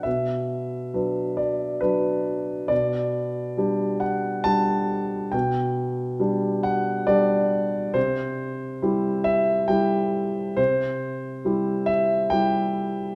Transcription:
\new Staff \with { instrumentName = "Grand piano" } { \time 3/4 \key g \major \tempo 4 = 68 << { e''4. d''8 b'4 | d''4. fis''8 a''4 | g''4. fis''8 d''4 | c''4. e''8 g''4 |
c''4. e''8 g''4 | } \\ { b,4 <fis d' b'>4 <fis d'>4 | b,4 <g d' g'>4 <g d' g'>4 | b,4 <g d' g'>4 <g d' g'>4 | c4 <g e' g'>4 <g e' g'>4 |
c4 <g e' g'>4 <g e' g'>4 | } >> }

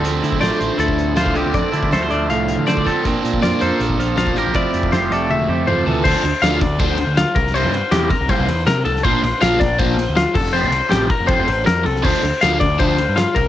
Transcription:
<<
  \new Staff \with { instrumentName = "Clean electric guitar" } { \time 4/4 \key d \minor \tempo 4 = 160 r4 d''8 c''8 a'4 f'8 g'8 | d''4 c''8 d''8 f''4 d''8 a'8 | r4 d''8 c''8 r4 f'8 g'8 | d''4 c''8 d''8 e''4 c''8 a'8 |
c''4 f''8 d''8 c''4 f'8 bes'8 | c''4 g'8 bes'8 c''4 bes'8 a'8 | c''4 f''8 d''8 c''4 f'8 a'8 | c''4 g'8 bes'8 c''4 bes'8 a'8 |
c''4 f''8 d''8 c''4 f'8 bes'8 | }
  \new Staff \with { instrumentName = "Clean electric guitar" } { \time 4/4 \key d \minor << { c'8 e'8 c''4 e'4 c''8 c'8~ | c'8 e'8 a'16 c''4.~ c''16 c''8 c'8 | c'4 f'8 a'4 f'4 bes'8 | e'4 g'8 a'4 g'4. |
r1 | r1 | r1 | r1 |
r1 | } \\ { d4 a4 a,4. d8~ | d4 a4 a,4. d8 | bes,4. bes4 f4. | f4. a4 c8 f8 e8 |
r1 | r1 | r1 | r1 |
r1 | } >> }
  \new Staff \with { instrumentName = "Overdriven electric guitar" } { \time 4/4 \key d \minor <d f a d'>8 <f a d'>8 <d f a d'>8 <f a d'>4. <d f a d'>8 <f a d'>8 | <d f a d'>8 <f a d'>8 <d f a d'>8 <f a d'>4. <d f a d'>8 <f a d'>8 | <bes, f bes d'>8 <f bes d'>8 <bes, f bes d'>8 <f bes d'>4. <bes, f bes d'>8 <f bes d'>8 | <f, c f a c'>8 <f a c'>8 <f, c f a c'>8 <f a c'>4. <c f a c'>8 <f a c'>8 |
<d f a d'>8 r8 <d f a d'>8 r8 <d f a d'>8 r4. | <c g bes e'>8 r8 <c g bes e'>8 r8 <c g bes e'>8 r4. | <bes, f bes d'>8 r8 <bes, f bes d'>8 r8 <bes, f bes d'>8 r4. | <c f a c'>8 r8 <c f a c'>8 r8 <c f a c'>8 r4. |
<d f a d'>8 r8 <d f a d'>8 r8 <d f a d'>8 r4. | }
  \new Staff \with { instrumentName = "Picked electric bass" } { \clef bass \time 4/4 \key d \minor d,8 d8 a,,16 r16 a,,16 r16 d,4. c,16 d,16 | f,16 r16 d8 d,8 d,8 c,8. d16 d8 r8 | bes,,16 r16 bes,8 f,16 r16 f,16 r16 bes,,4. a,,16 bes,,16 | f,,16 r16 f,8 f,,8 f,,8 e,,8 f,8 e,8 d,8 |
d,16 r16 d,16 r16 d,8 d,8 d,8. d,8 r16 c,8~ | c,16 g,8 r16 e,8 r16 c,16 r16 c,16 e,8 c8 c,8 | bes,,16 r16 bes,,16 r16 bes,,8 bes,,8 bes,,8. d,8 r16 f,,8~ | f,,16 c,8 r16 a,,8 r16 f,,16 r16 f,,16 a,,8 f,8 c,8 |
d,16 r16 d,16 r16 d,8 d,8 d,8. g,8 r16 c,8 | }
  \new DrumStaff \with { instrumentName = "Drums" } \drummode { \time 4/4 hh8 hh16 bd16 <hh sn>16 sn16 hh8 hh16 bd16 hh8 <hh sn>16 bd16 hh8 | <hh bd>8 hh16 bd16 <hh sn>8 hh8 hh8 hh8 <hh sn>16 bd16 <hh bd>8 | <hh bd>8 hh16 bd16 <hh sn>8 hh8 hh16 bd16 hh8 <hh sn>16 bd16 hh8 | <hh bd>8 hh16 bd16 <hh sn>8 hh8 tommh4 toml8 tomfh8 |
<cymc bd>8 cymr8 <cymr sn>8 <bd cymr sn>8 <bd cymr>8 cymr8 <cymr sn>8 <bd cymr>16 sn16 | cymr8 cymr8 <cymr sn>8 <bd cymr>8 <bd cymr>8 cymr8 <cymr sn>8 cymr16 sn16 | <bd cymr>8 cymr8 <cymr sn>8 <bd cymr sn>8 <bd cymr>8 cymr8 <cymr sn>8 <cymc bd>16 sn16 | r8 cymr8 <cymr sn>8 <bd cymr>8 <bd cymr>8 cymr8 <cymr sn>8 cymr16 sn16 |
<cymc bd>8 cymr8 <cymr sn>8 <bd cymr>8 <bd cymr>8 cymr8 <cymr sn>8 <bd cymr>8 | }
>>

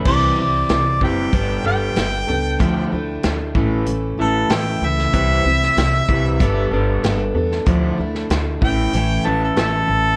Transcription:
<<
  \new Staff \with { instrumentName = "Harmonica" } { \time 4/4 \key c \mixolydian \tempo 4 = 95 d''8 d''4 g''4 g''4.~ | g''8 r2 a'8 g''8 e''8~ | e''2~ e''8 r4. | r4. g''4 a''16 a'16 a'4 | }
  \new Staff \with { instrumentName = "Steel-string acoustic guitar" } { \time 4/4 \key c \mixolydian <c e g c' e'>8 <g c' e'>4 <g c' e'>8 <g b d' a'>8 <b d' a'>8 <g b d' a'>8 <b d' a'>8 | <d f a d' e'>8 <a d' e'>4 <a, e a cis' e'>4 <a cis' e'>8 <e a cis' e'>4 | <c e g c' e'>8 <g c' e'>4. <g b d' a'>8 <b d' a'>8 <g b d' a'>8 <b d' a'>8 | <d f a d' e'>8 <a d' e'>4 <a cis' e'>8 <a, e a cis' e'>8 <a cis' e'>8 <e a cis' e'>4 | }
  \new Staff \with { instrumentName = "Clean electric guitar" } { \clef bass \time 4/4 \key c \mixolydian <c e g>8 <c e>8 <c e>8 <c e g>8 <g b d'>8 <g b d'>8 <g b>8 <g b>8 | <d f a>8 <d f>8 <d f>8 <a, e a>8 <a, e>8 <a, e a>8 <a, e>8 <a, e>8 | <c e g>8 <c e>8 <c e>8 <c e g>8 <g b d'>8 <g b d'>8 <g b>8 <g b>8 | <d f a>8 <d f>8 <d f>8 <a, e a>8 <a, e>8 <a, e a>8 <a, e>8 <a, e>8 | }
  \new Staff \with { instrumentName = "Upright bass" } { \clef bass \time 4/4 \key c \mixolydian c,8 r8 c,8 fis,,8 g,,8 g,,8 g,,8 cis,8 | d,8 d,8 d,8 a,,8 a,,8 a,,8 a,,8 cis,8 | c,8 c,8 c,8 c,8 g,,8 g,,8 g,,8 e,8 | d,8 d,8 d,8 a,,8 a,,8 a,,8 a,,8 a,,8 | }
  \new DrumStaff \with { instrumentName = "Drums" } \drummode { \time 4/4 <cymc bd>4 <hh sn>8 bd8 <hh bd>4 <hh sn>4 | <hh bd>4 <hh sn>8 bd8 hh4 <hh sn>8. sn16 | <hh bd>8. sn16 <hh sn>8 bd8 <hh bd>4 <hh sn>8. sn16 | <hh bd>8. sn16 <hh sn>8 bd8 hh4 <hh sn>4 | }
>>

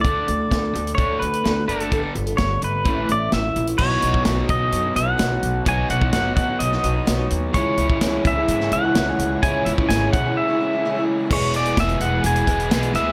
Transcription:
<<
  \new Staff \with { instrumentName = "Pedal steel guitar" } { \time 4/4 \key b \dorian \tempo 4 = 128 d''2 cis''8 b'4 a'8~ | a'8 r8 cis''8 b'4 d''8 e''8. r16 | cis''4 r8 dis''4 fis''4. | gis''8 fis''8 fis''8 fis''8 dis''4. r8 |
cis''4 r8 e''4 fis''4. | gis''8 e''8 gis''8 fis''8 e''4. r8 | cis''8 d''8 e''8 fis''8 gis''4. e''8 | }
  \new Staff \with { instrumentName = "String section" } { \time 4/4 \key b \dorian r1 | r1 | r1 | r1 |
<cis' e' gis' cis''>1~ | <cis' e' gis' cis''>1 | <b e' gis' b'>1 | }
  \new Staff \with { instrumentName = "Steel-string acoustic guitar" } { \time 4/4 \key b \dorian <d d' fis' a'>16 <d' fis' a'>8 <d' fis' a'>16 <d d' fis' a'>8 <d d' fis' a'>8. <d' fis' a'>16 <d d' fis' a'>8 <d d' fis' a'>16 <d' fis' a'>8 <d' fis' a'>16 | <g b d' a'>16 <b d' a'>8 <b d' a'>16 <g b d' a'>8 <g b d' a'>8 <a, a b cis' e'>16 <b cis' e'>16 <a b cis' e'>8 <a, a b cis' e'>16 <b cis' e'>8 <b cis' e'>16 | <b dis' fis' cis''>8 <b dis' fis' cis''>16 <dis' fis' cis''>16 <b dis' fis' cis''>16 <dis' fis' cis''>16 <b dis' fis' cis''>16 <dis' fis' cis''>8 <dis' fis' cis''>16 <b dis' fis' cis''>16 <dis' fis' cis''>16 <b dis' fis' cis''>16 <dis' fis' cis''>8. | <b dis' fis' cis''>8 <b dis' fis' cis''>16 <dis' fis' cis''>16 <b dis' fis' cis''>8 <b dis' fis' cis''>16 <dis' fis' cis''>8 <dis' fis' cis''>16 <b dis' fis' cis''>16 <dis' fis' cis''>16 <b dis' fis' cis''>16 <dis' fis' cis''>8. |
<cis gis cis' e' gis' cis''>8 <cis' e' gis' cis''>16 <cis' e' gis' cis''>16 <cis gis cis' e' gis' cis''>8 <cis' e' gis' cis''>16 <cis' e' gis' cis''>8 <cis' e' gis' cis''>16 <cis' e' gis' cis''>16 <cis' e' gis' cis''>16 <cis gis cis' e' gis' cis''>16 <cis' e' gis' cis''>8. | <cis gis cis' e' gis' cis''>8 <cis' e' gis' cis''>16 <cis' e' gis' cis''>16 <cis gis cis' e' gis' cis''>8 <cis' e' gis' cis''>16 <cis' e' gis' cis''>8 <cis' e' gis' cis''>16 <cis' e' gis' cis''>16 <cis' e' gis' cis''>16 <cis gis cis' e' gis' cis''>16 <cis' e' gis' cis''>8. | <e, b, e gis b gis'>8 <e gis b gis'>16 <e gis b gis'>16 <e, b, e gis b gis'>8 <e gis b gis'>4 <e gis b gis'>8 <e, b, e gis b gis'>8 <e gis b gis'>16 <e gis b gis'>16 | }
  \new Staff \with { instrumentName = "Overdriven electric guitar" } { \clef bass \time 4/4 \key b \dorian <d a d'>8 <d a>8 <d a>8 <d a>8 <d a d'>8 <d a>8 <d a>8 <d a d'>8 | <g, d g>8 <g, d>8 <g, d>8 <g, d>8 <a, e a>8 <a, e>8 <a, e>8 <a, e>8 | <b, fis b dis' fis'>1 | <b, fis b dis' fis'>1 |
<cis e gis cis' e'>1 | <cis e gis cis' e'>1 | <e, b, e gis b gis'>4 <e, b, e gis b gis'>4 <e gis b gis'>8 <e gis b gis'>8 <e gis b gis'>8 <e gis b gis'>8 | }
  \new Staff \with { instrumentName = "Upright bass" } { \clef bass \time 4/4 \key b \dorian d,8 d,8 d,8 d,8 d,8 d,8 d,8 fis,,8 | g,,8 g,,8 g,,8 gis,,8 a,,8 a,,8 a,,8 ais,,8 | b,,8 b,,8 b,,8 b,,8 fis,8 b,,8 b,,8 b,,8 | b,,8 b,,8 fis,,8 a,8 b,,8 b,,8 b,,8 dis,8 |
cis,8 cis,8 cis,8 cis,8 gis,8 cis,8 cis,8 cis,8 | cis,8 cis,8 gis,,8 b,8 r2 | e,,4 e,,8 e,,8 e,,8 e,,8 b,,8 d,8 | }
  \new DrumStaff \with { instrumentName = "Drums" } \drummode { \time 4/4 <hh bd>8 hh8 <hh bd sn>8 hh16 hh16 <hh bd>8 hh16 hh16 <hh sn>8 hh16 hh16 | <hh bd>8 hh16 hh16 <hh bd sn>8 hh8 <hh bd>8 hh8 <hh sn>8 hh16 hh16 | <cymc bd>8 hh16 bd16 <hh sn>8 <hh bd>8 hh8 hh8 <hh sn>8 hh8 | <hh bd>8 hh16 bd16 <hh sn>8 <hh bd>8 hh16 sn16 hh8 <hh sn>8 hh8 |
<hh bd>8 hh16 bd16 <hh sn>8 <hh bd>8 hh16 sn16 hh8 <hh sn>8 hh8 | <hh bd>8 hh16 bd16 <hh sn>8 <hh bd>8 r4 r4 | <cymc bd>16 hh16 hh16 hh16 <hh bd sn>16 hh16 hh8 hh16 hh16 <hh bd>16 hh16 <hh sn>16 hh16 <hh sn>8 | }
>>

